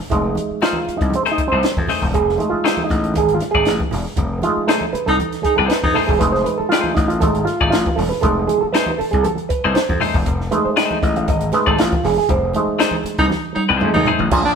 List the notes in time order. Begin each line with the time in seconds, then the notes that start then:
0.00 snare
0.10 F1 G#3 A3 D#4, kick, closed hi-hat, muted conga, low conga
0.35 closed hi-hat, muted conga, high conga
0.51 muted slap bass stroke
0.61 A3 D#4 F4 G#4 C5, snare, closed hi-hat, muted conga
0.73 high conga
0.85 muted slap bass stroke, closed hi-hat, muted conga
0.97 C2 D#4, kick, closed hi-hat
1.10 closed hi-hat, high conga
1.15 C4
1.26 A3 D#4 G#4 C5, snare, closed hi-hat
1.32 D#4
1.38 muted slap bass stroke, kick, closed hi-hat
1.48 C4 C5
1.52 C2 A3 D#4 G#4
1.63 snare, closed hi-hat
1.77 F2, kick, high conga
1.88 A3 D#4 G#4 C5, snare, open hi-hat, muted conga, low conga
2.02 E1, kick
2.13 F1 G#4, kick, closed hi-hat, muted conga, low conga
2.29 snare
2.38 G#3 A3 D#4, closed hi-hat, muted conga, high conga
2.50 F4, muted slap bass stroke
2.64 A3 D#4 G#4 C5, snare, closed hi-hat, muted conga
2.77 high conga
2.84 D#4
2.89 A1, kick, snare, closed hi-hat, muted conga
3.04 closed hi-hat
3.14 G#1 G#4, kick, closed hi-hat, high conga
3.28 closed hi-hat
3.34 F4
3.39 snare, closed hi-hat, muted conga
3.51 G#1 G#4 D5, kick
3.56 A3 D#4
3.65 A1, snare, closed hi-hat
3.79 kick, high conga
3.91 E1, snare, open hi-hat, low conga
4.06 snare
4.16 F1, kick, closed hi-hat, low conga
4.42 G#3 A3 D#4 F4, closed hi-hat, muted conga, high conga
4.57 muted slap bass stroke
4.67 A3 D#4 G#4 A4 C5, snare, closed hi-hat
4.81 high conga
4.93 B4, muted slap bass stroke, closed hi-hat, muted conga
5.06 C2 D#4 A4, kick, closed hi-hat
5.19 closed hi-hat, muted conga, high conga
5.32 snare, closed hi-hat
5.43 D#4 G#4, muted slap bass stroke, kick, closed hi-hat
5.56 C2 A3 D#4 G#4 A4 C5
5.68 B4, snare, closed hi-hat
5.83 F2 D#4, kick, high conga
5.94 A3 D#4 G#4 A4 C5, snare, open hi-hat, muted conga, low conga
6.07 E1 G#4, kick
6.19 F1 G#3 A3 D#4 B4, kick, closed hi-hat, muted conga, low conga
6.32 C5, snare
6.44 B4, closed hi-hat, high conga
6.58 A4, muted slap bass stroke
6.69 A3 D#4 F4 C5, snare, closed hi-hat
6.73 G#4
6.84 high conga
6.95 A1 D#4, kick, snare, closed hi-hat, muted conga
7.08 F4, closed hi-hat
7.20 G#1 G#3 A3 D#4 A4, kick, closed hi-hat, high conga
7.35 closed hi-hat
7.45 F4, snare, closed hi-hat, muted conga
7.61 G#1 A3 D#4 G#4 D5, kick
7.71 A1 F4, snare, closed hi-hat
7.86 kick, high conga
7.96 E1 A4, snare, open hi-hat, low conga
8.09 B4, snare
8.21 F1 G#3 A3 D#4 A4, kick, closed hi-hat, muted conga, low conga
8.47 G#4, closed hi-hat, high conga
8.61 A4, muted slap bass stroke
8.73 A3 D#4 G#4 B4 C5, snare, closed hi-hat, muted conga
8.86 high conga
8.98 A4, muted slap bass stroke, open hi-hat, muted conga
9.11 C2 G#4, kick, closed hi-hat
9.23 A4, closed hi-hat, muted conga, high conga
9.38 closed hi-hat
9.49 B4, muted slap bass stroke, kick, closed hi-hat
9.64 C2 A3 D#4 G#4 C5
9.75 C5, snare, closed hi-hat
9.89 F2, kick, high conga
10.00 A3 D#4 G#4 C5, snare, open hi-hat, low conga
10.14 E1, kick
10.26 F1, kick, closed hi-hat, low conga
10.41 snare
10.51 G#3 A3 D#4 B4, closed hi-hat, high conga
10.65 C5, muted slap bass stroke
10.76 A3 D#4 G#4 C5 D#5, snare, closed hi-hat
10.91 high conga
11.03 A1 D#5, kick, snare, closed hi-hat
11.16 F5, closed hi-hat
11.28 G#1 D#5, kick, closed hi-hat, high conga
11.41 closed hi-hat
11.52 G#3 A3 D#4 B4, snare, closed hi-hat, muted conga
11.66 G#1 A3 D#4 G#4 A4 D5, kick
11.78 A1 F4, snare, closed hi-hat
11.92 kick, high conga
12.04 E1 G#4, snare, open hi-hat, low conga
12.18 G#4, snare
12.29 F1 C5, kick, closed hi-hat, low conga
12.54 G#3 A3 D#4, closed hi-hat, muted conga, high conga
12.67 muted slap bass stroke
12.79 A3 D#4 G#4 C5, snare, closed hi-hat, muted conga
12.91 high conga
13.04 muted slap bass stroke, snare, closed hi-hat, muted conga
13.18 C2 D#4, kick, closed hi-hat
13.30 snare, muted conga, high conga
13.55 D#4, muted slap bass stroke, high tom
13.69 C2 A3 D#4 G#4 C5
13.80 F2 G#3 A3 D#4, mid tom, muted conga
13.94 D#2 D#4, mid tom, high conga
14.05 A3 D#4 G#4 C5, floor tom, low conga
14.19 A1, floor tom
14.31 A#1 A#2 F3, kick, crash, low conga
14.45 D4, snare